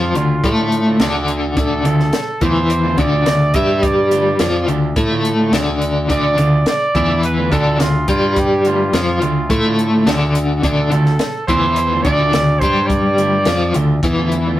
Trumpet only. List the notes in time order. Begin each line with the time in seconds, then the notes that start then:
Already playing: F4
1.59 A4
2.42 C5
2.98 D5
3.55 E5
3.83 D5
6.11 D5
6.68 D5
7.25 B4
7.53 A4
7.80 F4
8.10 F4
8.39 G4
8.67 F4
10.64 A4
11.47 C5
12.03 D5
12.59 C5
12.87 D5